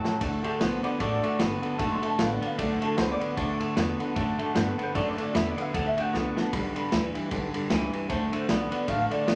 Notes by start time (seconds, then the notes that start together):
Already playing: A5
0.04 A2 F#3 A3 C#4 E4 A4, muted upright bass stroke, snare
0.21 D2 D3 A3 D4 F#4 A4, kick, ride
0.43 D3 A3 D4 F#4 A4, muted upright bass stroke, ride
0.59 B1 D3 A3 B3 D4 F#4 A4 C5, snare, ride
0.83 D3 B3 D4 F#4 A4 D5, muted upright bass stroke, ride
0.99 A1 D3 A3 D4 F#4 A4 D5, kick, ride
1.23 D3 A3 D4 F#4 A4, muted upright bass stroke, ride
1.39 G1 D3 A3 B3 D4 F#4 A4, snare, ride
1.62 D3 B3 D4 F#4 A4, muted upright bass stroke, ride
1.66 A5
1.78 F#1 D3 A3 D4 F#4 A4, kick, ride
1.92 C6
2.02 D3 A3 D4 F#4 A4 A5, muted upright bass stroke, ride
2.18 A1 D3 A3 B3 D4 F#4 A4 F5, snare, ride
2.32 D5
2.41 D3 B3 D4 F#4 A4 F5, muted upright bass stroke, ride
2.58 B1 D3 A3 D4 F#4 A4 D5, kick, ride
2.71 C5
2.81 D3 A3 D4 F#4 A4, muted upright bass stroke, ride
2.97 C#2 D3 A3 B3 D4 F#4 A4 C5, snare, ride
3.12 D5
3.20 D3 B3 D4 F#4 A4, muted upright bass stroke, ride
3.37 D2 D3 A3 D4 F#4 A4, kick, ride
3.60 D3 A3 D4 F#4 A4, muted upright bass stroke, ride
3.76 E2 D3 A3 B3 D4 F#4 A4, snare, ride
3.99 D3 B3 D4 F#4 A4, muted upright bass stroke, ride
4.16 F#2 D3 A3 D4 F#4 A4, kick, ride
4.38 D3 A3 D4 F#4 A4, muted upright bass stroke, ride
4.55 G2 D3 A3 B3 D4 F#4 A4 B4, snare, ride
4.69 A4
4.78 D3 B3 D4 F#4 A4, muted upright bass stroke, ride
4.82 B4
4.95 F#2 D3 A3 D4 F#4 A4 D5, kick, ride
5.09 B4
5.18 D3 A3 D4 F#4 A4 D5, muted upright bass stroke, ride
5.34 E2 D3 A3 B3 D4 F#4 A4 E5, snare, ride
5.48 D5
5.57 D3 B3 D4 F#4 A4 E5, muted upright bass stroke, ride
5.74 D2 D3 A3 D4 F#4 A4 F#5, kick, ride
5.87 E5
5.97 D3 A3 D4 F#4 A4 F#5, muted upright bass stroke, ride
6.13 C2 D3 A3 B3 D4 F#4 A4 A5, snare
6.27 F#5
6.36 D3 B3 D4 F#4 A4 A5, muted upright bass stroke, snare
6.52 B1 G2 D3 G3 D4 G4 B4 B5, kick, ride
6.67 B5
6.75 G2 D3 D4 G4 B4, muted upright bass stroke, ride
6.92 D2 G2 E3 G3 D4 G4 B4, snare, ride
7.14 G2 E3 D4 G4 B4, muted upright bass stroke, ride
7.31 B1 G2 D3 G3 D4 G4 B4, kick, ride
7.54 G2 D3 D4 G4 B4, muted upright bass stroke, ride
7.70 C#2 G2 E3 G3 D4 G4 B4, snare, ride
7.93 G2 E3 D4 G4 B4, muted upright bass stroke, ride
8.09 D2 D3 A3 D4 F#4 A4 C5, kick, ride
8.32 D3 A3 D4 F#4 A4, muted upright bass stroke, ride
8.49 B1 D3 A3 B3 D4 F#4 A4 D5, snare, ride
8.71 D3 B3 D4 F#4 A4, muted upright bass stroke, ride
8.88 A1 D3 A3 D4 F#4 A4 F5, kick, ride
9.11 D3 A3 D4 F#4 A4 D5, muted upright bass stroke, ride
9.27 F#1 D3 B3 D4 F#4 A4, snare, ride